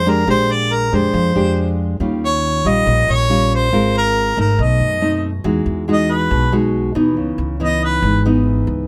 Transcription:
Already playing: F2 F3 C5
0.06 G#3 D4 G4 A#4
0.27 A#1 A#2 G#3 D4 G4 C5
0.52 D5
0.73 A#4
0.92 F2 G#3 D4 G4 C5
1.13 F2 F3
1.35 F2 G#3 D4 G4
2.00 D#2 D#3 G3 C#4 F4
2.25 C#5
2.65 A#1 G3 C#4 F4 D#5
2.86 A#1 A#2
3.08 A#1 C#5
3.29 G3 C#4 F4
3.55 C5
3.73 G#1 G#3 C4 F4 A#4
3.98 A#4
4.37 G#1 A3 D#4 A#4
4.58 B1 B2 D#5
4.80 F#2
5.01 A3 C4 D#4
5.44 E2 E3 G#3 D#4 F#4
5.66 E2
5.88 G#3 D#4 F#4
5.93 D#5
6.12 B4
6.31 B1 B2
6.52 G#3 D#4 F#4
6.95 E2 E3 B3 D#4
7.17 C#2 C#3
7.38 C#2
7.60 E3 B3 D#4 D#5
7.84 B4
8.02 G#1 G#2
8.25 E3 B3 D#4
8.67 C#2

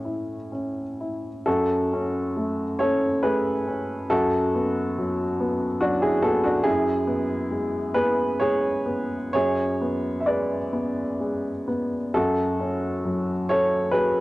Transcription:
Already playing: A2 A3 C#4 E4 C#5
0.05 E4
0.52 C#4
1.00 E4
1.46 F#2 F#4 A4
1.93 C#4
2.37 A3
2.79 C#4 A4 C#5
3.23 A3 G#4 B4
3.67 C#4
4.10 F#2 F#4 A4
4.55 B3
4.98 F#3
5.40 B3
5.81 F#3 D4 F#4
6.02 E4 G#4
6.22 B3 F#4 A4
6.44 D4 F#4
6.64 F#2 E4 G#4
7.07 B3
7.51 G#3
7.94 B3 G#4 B4
8.40 G#3 G#4 C#5
8.86 B3
9.33 F#2 G#4 C#5
9.81 B3
10.20 E5
10.26 G#3 B4 D5
10.73 B3
11.20 G#3
11.68 B3
12.14 F#2 F#4 A4
12.60 C#4
13.05 F#3
13.49 C#4 A4 C#5
13.91 F#3 G#4 B4

